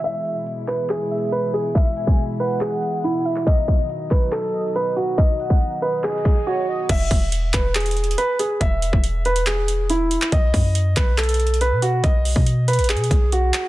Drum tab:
CC |------------------------------------------------------------------------------------------------|------------------------------------------------------------------------------------------------|------------------------------------------------------------------------------------------------|------------------------------------------------------------------------------------------------|
HH |x-----------x-----------x-----------x-----------x--x--x--x--x---x---x---x-----------x-----------|x-----------x-----------x-----------x-----x-----x-----------x-----------x-----------x-----------|x-----------x-----------x-----------x-----------x--x--x--x--x---x---x---x-----------x-----------|x-----------x-----------x-----------x--x--x--x--x---x---x---x-----------------------------------|
CP |------------------------------------x-----------x-----------------------------------------------|------------------------------------------------x-----------------------------------------x-----|------------------------------------x-----------x-----------------------------------------------|------------------------------------------------x-----------------------------------------------|
BD |------------------------------------------------------------------------------------------------|o-----------------o-----------------------------------------------------------------------------|o-----------o-----------------------o-----------------------------------------------------------|o-----------------o-----------------------------------------o-----------------------------------|

CC |x-----------------------------------------------------------------------------------------------|------------------------------------------------------------------------------------------------|------------------------------------------------------------------------------------------------|------------------------------------------------------------------------------------------------|
HH |x-----------o-----------x-----------x-----------x--x--x--x--x---x---x---x-----------x-----------|x-----------x-----------x-----------x-----x-----x-----------x-----------x-----------x-----------|x-----------o-----------x-----------x-----------x--x--x--x--x---x---x---x-----------x-----------|x-----------o-----------x-----------x--x--x--x--x---x---x---x-----------x-----------x-----------|
CP |------------------------------------x-----------x-----------------------------------------------|------------------------------------------------x-----------------------------------------x-----|------------------------------------x-----------x-----------------------------------------------|------------------------------------------------x-----------------------------------x-----------|
BD |o-----------o-----------------------o-----------------------------------------------------------|o-----------------o-----------------------------------------------------------------------------|o-----------o-----------------------o-----------------------------------------------------------|o-----------------o-----------------------------------------o-----------------------------------|